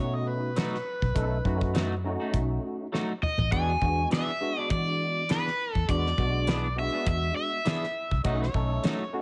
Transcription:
Already playing: fingered electric bass B2, tine electric piano A3 C#4 D#4 F#4
0.00 harmonica C#5
0.15 harmonica D#5
0.28 harmonica B4
0.56 clean electric guitar F#3 A3 D#4 F#4, snare, closed hi-hat
0.75 snare
1.02 fingered electric bass B1, kick
1.15 fingered electric bass B1, tine electric piano A3 C#4 D#4 A4, kick, closed hi-hat
1.45 fingered electric bass F#2, tine electric piano A3 C#4 D#4 F#4, kick
1.61 kick
1.74 clean electric guitar F#3 A3 D#4 F#4, snare, closed hi-hat
2.04 tine electric piano A3 C#4 D#4 F#4
2.20 clean electric guitar A3 D#4 F#4
2.33 fingered electric bass B1, kick, closed hi-hat
2.92 clean electric guitar F#3 A3 D#4 F#4, snare
3.22 overdriven electric guitar D#5, mid tom
3.38 fingered electric bass A1, floor tom
3.52 fingered electric bass E2, clean electric guitar E3 B3 D4 G#4, tine electric piano G#3 B3 D4 F#4, overdriven electric guitar G#5, kick, closed hi-hat
3.81 fingered electric bass E2, tine electric piano G#3 B3 D4 F#4, kick
4.11 clean electric guitar E3 B3 D4 G#4, overdriven electric guitar E5, snare, closed hi-hat
4.40 tine electric piano G#3 B3 D4 F#4
4.57 clean electric guitar B3 D4 G#4, overdriven electric guitar D5
4.70 fingered electric bass E3, overdriven electric guitar D5, kick, closed hi-hat
5.29 clean electric guitar E3 B3 D4 G#4, overdriven electric guitar B4, snare, closed hi-hat
5.47 snare
5.73 fingered electric bass E2, overdriven electric guitar A4, kick
5.88 fingered electric bass E2, tine electric piano G#3 B3 D4 F#4, overdriven electric guitar D5, kick, closed hi-hat
6.06 snare
6.17 fingered electric bass B1, tine electric piano G#3 B3 D4 F#4, kick
6.47 clean electric guitar E3 B3 D4 G#4, snare, closed hi-hat
6.76 tine electric piano G#3 B3 D4 F#4, overdriven electric guitar E5
6.93 clean electric guitar B3 D4 G#4
7.06 fingered electric bass E2, overdriven electric guitar E5, kick, closed hi-hat
7.36 overdriven electric guitar E5
7.65 clean electric guitar E3 B3 D4 G#4, snare, closed hi-hat
7.84 snare
8.11 fingered electric bass C2, kick
8.24 fingered electric bass B1, clean electric guitar F#3 A3 D#4 F#4, tine electric piano A3 C#4 D#4 F#4, harmonica D#5, kick, closed hi-hat
8.42 harmonica C#5, snare
8.54 fingered electric bass B1, tine electric piano A3 C#4 D#4 A4, kick
8.83 clean electric guitar F#3 A3 D#4 F#4, snare, closed hi-hat
9.13 tine electric piano A3 C#4 D#4 F#4

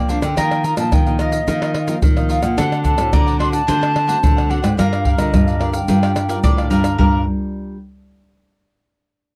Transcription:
Already playing: nylon-string guitar A#3, mandolin C5, flute G5
0.08 nylon-string guitar F3 C4 D4, cavaquinho D4 A#4 C5 D5, flute F5, pandeiro, shaker
0.22 nylon-string guitar D3, cavaquinho A#4 C5 D5, flute G5, pandeiro, tamborim, shaker
0.37 nylon-string guitar D#3 F3 A#3 D#4, cavaquinho F4 A#4 D#5 F5, mandolin A#4, pandeiro, tamborim, shaker, surdo
0.51 pandeiro, tamborim, shaker
0.64 cavaquinho F4 A#4 D#5 F5, flute A#5, pandeiro, shaker
0.77 nylon-string guitar A#2 F3 A#3 D#4, flute A5, pandeiro, tamborim, shaker
0.92 nylon-string guitar A#2 D#3, flute G5, pandeiro, tamborim, shaker, surdo
1.06 nylon-string guitar F3 A#3 D#4, cavaquinho A#4 D#5 F5, pandeiro, shaker
1.19 cavaquinho F4 A#4 D#5 F5, flute D#5, pandeiro, tamborim, shaker
1.32 cavaquinho A#4 D#5 F5, pandeiro, shaker
1.47 nylon-string guitar D#3 F3 A#3 D#4, cavaquinho F4 A#4 D#5 F5, pandeiro, shaker, surdo
1.62 cavaquinho F4 A#4 D#5 F5, pandeiro, tamborim, shaker
1.74 cavaquinho F4 A#4 D#5 F5, pandeiro, tamborim
1.87 nylon-string guitar F3 A#3 D#4, cavaquinho F4 A#4 D#5 F5, pandeiro, shaker
2.02 nylon-string guitar A#2 D#3, pandeiro, shaker, surdo
2.16 nylon-string guitar F3 A#3 D#4, cavaquinho A#4 D#5 F5, pandeiro, tamborim, shaker
2.29 cavaquinho F4 A#4 D#5 F5, flute F5, pandeiro, shaker
2.42 nylon-string guitar A#2, cavaquinho A#4 D#5 F5, flute F#5, pandeiro, tamborim, shaker
2.57 nylon-string guitar D3 A3 C4 F#4, cavaquinho D4 C5 D5 F#5, mandolin A4, pandeiro, tamborim, shaker, surdo
2.72 pandeiro, tamborim, shaker
2.84 cavaquinho D4 C5 D5 F#5, flute A5, pandeiro, shaker, surdo
2.98 nylon-string guitar A2 A3 C4 F#4, pandeiro, tamborim, shaker
3.13 nylon-string guitar A2 D3, mandolin D5, flute A#5, pandeiro, tamborim, shaker, surdo
3.26 cavaquinho C5 D5 F#5, pandeiro, shaker
3.39 nylon-string guitar A3 C4 F#4, cavaquinho D4 C5 D5 F#5, flute C6, pandeiro, tamborim
3.52 cavaquinho C5 D5 F#5, flute A5, pandeiro, shaker
3.67 nylon-string guitar D3 A3 C4 F#4, cavaquinho D4 C5 D5 F#5, mandolin C5, pandeiro, shaker, surdo
3.81 cavaquinho D4 C5 D5 F#5, pandeiro, tamborim, shaker
3.94 cavaquinho D4 C5 D5 F#5, pandeiro, tamborim
4.07 nylon-string guitar A3 C4 F#4, cavaquinho D4 C5 D5 F#5, pandeiro, shaker
4.23 nylon-string guitar A2 D3, pandeiro, shaker, surdo
4.37 cavaquinho C5 D5 F#5, pandeiro, tamborim, shaker
4.49 nylon-string guitar A3 C4 F#4, cavaquinho D4 C5 D5 F#5, flute F#5, pandeiro
4.62 nylon-string guitar G#2, cavaquinho C5 D5 F#5, flute G5, pandeiro, tamborim, shaker
4.77 nylon-string guitar G2 G3 D4 F4 A#4, cavaquinho G4 A#4 D5 F5, mandolin A#4, flute F5, pandeiro, tamborim, shaker, surdo
4.93 pandeiro, tamborim, shaker
5.05 cavaquinho G4 A#4 D5 F5, pandeiro, surdo
5.18 nylon-string guitar D3 F4 A#4, flute D#5, pandeiro, tamborim, shaker
5.33 nylon-string guitar G2 D3, pandeiro, tamborim, shaker, surdo
5.47 cavaquinho A#4 D5 F5, pandeiro, shaker
5.60 nylon-string guitar D4 F4 A#4, cavaquinho G4 A#4 D5 F5, flute F5, pandeiro, tamborim
5.73 cavaquinho A#4 D5 F5, flute G5, pandeiro, shaker
5.88 nylon-string guitar G2 G3 D4 F4 A#4, cavaquinho G4 A#4 D5 F5, pandeiro, shaker, surdo
6.03 cavaquinho G4 A#4 D5 F5, pandeiro, tamborim, shaker
6.15 cavaquinho G4 A#4 D5 F5, pandeiro, tamborim, shaker
6.29 nylon-string guitar D4 F4 A#4, cavaquinho G4 A#4 D5 F5, pandeiro, shaker
6.43 nylon-string guitar A2 D3, mandolin D5, pandeiro, shaker, surdo
6.57 cavaquinho A#4 D5 F5, pandeiro, tamborim, shaker
6.70 nylon-string guitar G2 D4 F4 A#4, cavaquinho G4 A#4 D5 F5, mandolin A#4, pandeiro, shaker
6.84 cavaquinho A#4 D5 F5, pandeiro, tamborim, shaker
6.98 nylon-string guitar G2 G3 D4 F4 A#4, cavaquinho G4 A#4 D5 F5, mandolin A#4, flute A#5, surdo

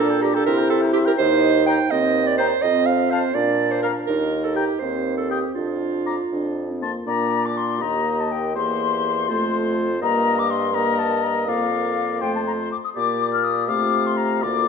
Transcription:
Already playing: bassoon A#2, french horn D4, clarinet A4
0.00 oboe A#5, flute D6
0.10 oboe G5, flute A#5
0.22 clarinet G4, oboe A#5, flute D6
0.34 clarinet A4, oboe G5, flute A#5
0.46 bassoon C3, french horn E4, clarinet A#4, oboe E5, flute C6
0.58 oboe G5, flute A#5
0.70 clarinet A4, oboe E5, flute C6
0.82 oboe G5, flute A#5
0.93 clarinet G4, oboe E5, flute C6
1.05 clarinet A#4, oboe G5, flute A#5
1.18 bassoon D#2, french horn D#4, clarinet C5
1.67 clarinet G5, oboe G5, flute A#5
1.91 bassoon D#2, french horn C4, clarinet D#5
2.28 clarinet D5
2.38 clarinet C5, oboe G5, flute A#5
2.62 bassoon F2, french horn C4, clarinet D#5
2.86 clarinet F5
3.11 clarinet C5, oboe F5, flute A5
3.34 bassoon A#2, french horn D4, clarinet D5
3.72 clarinet C5
3.83 clarinet A#4, oboe F5, flute A#5
4.07 bassoon D#2, french horn D#4, clarinet A#4
4.45 clarinet A4
4.55 clarinet G4, oboe G5, flute A#5
4.80 bassoon D#2, french horn C4, clarinet C5
5.18 clarinet A4
5.30 clarinet G4, oboe G5, flute D#6
5.55 bassoon F2, french horn D4, clarinet F4
6.06 oboe A#5, flute D6
6.32 bassoon F2, french horn D4
6.71 french horn C4
6.82 french horn A#3, oboe A5, flute C6
7.06 bassoon A#2, french horn A#3, clarinet D4, oboe D5, flute A#5
7.46 flute D6
7.57 flute C6
7.80 bassoon D#2, french horn A#3, clarinet G4, oboe D#5, flute A#5
8.20 flute A5
8.32 flute G5
8.56 bassoon E2, french horn A#3, clarinet G4, oboe C5, flute C6
9.29 bassoon F2, french horn A3, clarinet F4, oboe C5
10.01 bassoon G2, french horn A#3, clarinet A#4, oboe D#5, flute A#5
10.39 flute D6
10.51 flute C6
10.73 french horn A#3, clarinet A#4, oboe D#5, flute A#5
10.99 flute A5
11.23 flute A#5
11.47 bassoon F2, french horn A#3, clarinet A#4, oboe D5, flute F5
12.21 bassoon F2, french horn A3, clarinet F4, oboe C5, flute G5
12.35 flute A5
12.47 flute A#5
12.61 flute C6
12.72 flute D6
12.84 flute D#6
12.95 bassoon A#2, french horn A#3, clarinet G4, oboe D5, flute D6
13.33 flute F6
13.44 flute D#6
13.68 bassoon C3, french horn A3, clarinet F4, oboe F5, flute D6
14.07 flute C6
14.17 flute A#5
14.42 bassoon D2, french horn A#3, clarinet F4, oboe D5, flute D6

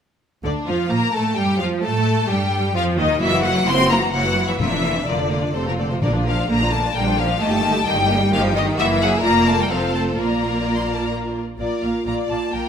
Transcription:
0.43 double bass section D2, viola section D3, cello section D3, violin section D4 D5
0.66 double bass section F2, viola section F3, cello section F3, violin section F4 F5
0.90 double bass section A#2, viola section A#3, cello section A#3, violin section A#4 A#5
1.13 double bass section A2, viola section A3, cello section A3, violin section A4 A5
1.35 double bass section G2, viola section G3, cello section G3, violin section G4 G5
1.58 double bass section F2, viola section F3, cello section F3, violin section F4 F5
1.82 double bass section A2, viola section A3, cello section A3, violin section A4 A5
2.28 double bass section G2, viola section G3, cello section G3, violin section G4 G5
2.74 double bass section F2, cello section F3, viola section F3, violin section F4 F5
2.97 double bass section D#2, viola section D#3, cello section D#3, violin section D#4 D#5
3.20 double bass section F#1, cello section E3, viola section F#3 A#3, violin section E4 F#4 E5
3.31 viola section E3 F#3, violin section E4 F#4
3.43 viola section F#3 A#3, cello section F#3, violin section E4 F#4 F#5
3.54 viola section E3 F#3, violin section E4 F#4
3.65 double bass section F#1, viola section F#3 A#3, cello section C4, violin section E4 F#4 C6
3.78 viola section E3 F#3, violin section E4 F#4
3.90 viola section F#3 A#3, cello section A#3, violin section E4 F#4 A#5
4.01 viola section E3 F#3, violin section E4 F#4
4.12 double bass section F#1, cello section F#3, viola section F#3 A#3, violin section E4 F#4 F#5
4.24 viola section E3 F#3, violin section E4 F#4
4.35 viola section F#3 A#3, violin section E4 F#4
4.46 cello section E3, viola section E3 F#3, violin section E4 F#4 E5
4.58 double bass section F1, timpani F2, viola section D3 A#3, cello section E3, violin section F4 A#4 E5
4.71 viola section F3 D4, violin section D4 D5
4.81 viola section D3 A#3, violin section F4 A#4
4.95 viola section F3 D4, violin section D4 D5
5.06 double bass section F1, cello section D3, viola section D3 A#3, violin section F4 A#4 D5
5.18 viola section F3 D4, violin section D4 D5
5.28 viola section D3 A#3, violin section F4 A#4
5.42 viola section F3 D4, violin section D4 D5
5.54 double bass section F1, cello section C3, viola section A3 C4, violin section A4 C5
5.67 cello section A#2, viola section F3 A3, violin section F4 A#4 C5
5.77 cello section D3, viola section A3 C4, violin section A4 D5
5.90 cello section C3, viola section F3 A3, violin section F4 C5
6.01 double bass section A#1, timpani A#2, viola section D3 A#3, cello section D3, violin section D4 A#4 D5
6.14 viola section F3 D4, violin section F4 D5
6.24 viola section D3 A#3, cello section F3, violin section D4 A#4 F5
6.37 viola section F3 D4, violin section F4 D5
6.48 double bass section A#1, viola section D3 A#3, cello section A#3, violin section D4 A#4 A#5
6.60 viola section F3 D4, violin section F4 D5
6.70 viola section D3 A#3, cello section A3, violin section D4 A#4 A5
6.83 viola section F3 D4, violin section F4 D5
6.93 double bass section A#1, viola section D3 A#3, cello section G3, violin section D4 A#4 G5
7.04 viola section F3 D4, violin section F4 D5
7.16 viola section D3 A#3, cello section F3, violin section D4 A#4 F5
7.27 viola section F3 D4, violin section F4 D5
7.39 double bass section G1, viola section D#3 A#3, cello section A3, violin section G4 D#5 A5
7.51 viola section G3, violin section D#4 G5
7.62 viola section D#3 A#3, violin section G4 D#5
7.74 viola section G3, violin section D#4 G5
7.85 double bass section G1, viola section D#3 A#3, cello section G3, violin section G4 D#5 G5
7.96 viola section G3, violin section D#4 G5
8.08 viola section D#3 A#3, violin section G4 D#5
8.20 viola section G3, violin section D#4 G5
8.32 double bass section G1, viola section D#3 A#3, cello section F3, violin section G4 D#5 F5
8.42 viola section G3, violin section D#4 G5
8.53 viola section D#3 A#3, cello section D#3, violin section G4 D#5
8.65 viola section G3, violin section D#4 G5
8.77 double bass section F#1, cello section E3, viola section A#3 E4, violin section F#4 E5
9.00 cello section F#3, violin section G#4 F#5
9.22 double bass section F1, viola section A#3 F4, cello section A#3, violin section A#4 D5 A#5
9.47 cello section A3, violin section A5
9.59 cello section G3, violin section G5
9.70 double bass section F1, cello section F3, viola section C4 F4, violin section A4 C5 F5
9.94 cello section A3, violin section A5
10.16 double bass section A#1, viola section A#3 F4, cello section A#3, violin section A#4 D5 A#5
10.76 violin section C6
10.84 violin section A#5
10.94 violin section A5
11.04 violin section A#5
11.59 double bass section A#1, cello section A#2, viola section A#3 F4, french horn section A#3 F4, violin section A#4 D5
11.82 double bass section A#1, cello section A#2, viola section A#3 F4, violin section F5
12.06 double bass section A#1, cello section A#2, viola section A#3 F4, violin section D5 A#5
12.29 double bass section A#1, cello section A#2, viola section A#3 F4, violin section A5
12.52 double bass section A#1, cello section A#2, viola section A#3 F4, violin section A#4 G5

